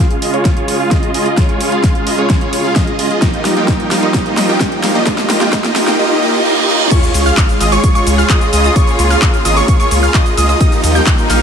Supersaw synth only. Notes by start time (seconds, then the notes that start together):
0.00 F4 G#4 F5
0.22 F4 G#4 D#5
0.34 F4 G#4 C#5
0.45 C#5
0.57 F4 G#4 C#5
0.80 F4 G#4 F5
0.91 F4 G#4 D#5
1.14 F4 G#4 D#5
1.26 F4 G#4 D#5
1.37 F4 G#4 C#5
1.72 F4 G#4 F5
1.84 F4 G#4 F5
2.07 F4 G#4 D#5
2.18 F4 G#4 C#5
2.30 F4 G#4 C#5
2.41 F4 G#4 C#5
2.64 F4 G#4 F5
2.76 F4 G#4 D#5
2.99 F4 G#4 D#5
3.10 F4 G#4 D#5
3.22 A#3 D#4 F4 G4 D#5
3.57 A#3 D#4 F4 G4 G5
3.68 A#3 D#4 F4 G4 G5
3.91 A#3 D#4 F4 G4 F5
4.03 A#3 D#4 F4 G4 D#5
4.14 A#3 D#4 D#5
4.49 A#3 D#4 F4 G4 G5
4.84 A#3 D#4 F4 G4 F5
4.95 A#3 D#4 F4 G4 D#5
5.07 A#3 D#4 G4 D#5
5.41 A#3 D#4 F4 G4 G5
5.53 A#3 D#4 F4 G4 D#5
5.87 A#3 D#4 F4 G4 G5
5.99 A#3 D#4 F4 G4 D#5
6.22 A#3 D#4 F4 G4 D#5
6.45 A#3 D#4 F4 G4 D#5
6.68 A#3 D#4 F4 G4 D#5
6.91 F4 G#4 C#5
7.26 F4 G#4 F5
7.61 F4 G#4 D#5
7.72 F4 G#4 C#5
7.84 F4 G#4 C#5
7.95 F4 G#4 C#5
8.18 F4 G#4 F5
8.30 F4 G#4
8.53 F4 G#4 D#5
8.64 F4 G#4 D#5
8.76 F4 G#4 C#5
9.11 F4 G#4 F5
9.22 F4
9.45 F4 G#4 D#5
9.57 F4 G#4 C#5
9.68 F4 G#4 C#5
9.80 F4 G#4 C#5
10.03 F4 G#4 F5
10.14 F4 G#4 D#5
10.37 F4 G#4 D#5
10.49 F4 G#4 D#5
10.60 A#3 D#4 F4 G4 D#5
10.95 A#3 D#4 F4 G4 G5
11.07 A#3 D#4 F4 G4 G5
11.30 A#3 D#4 F4 G4 F5